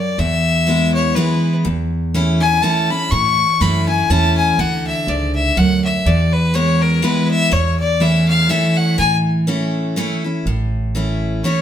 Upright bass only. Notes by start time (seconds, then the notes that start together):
0.18 E2
1.65 E2
3.12 A2
3.61 F#2
4.10 E2
4.59 D2
5.07 C#2
5.57 D2
6.06 E2
7.52 E2
8.99 A2
10.45 A1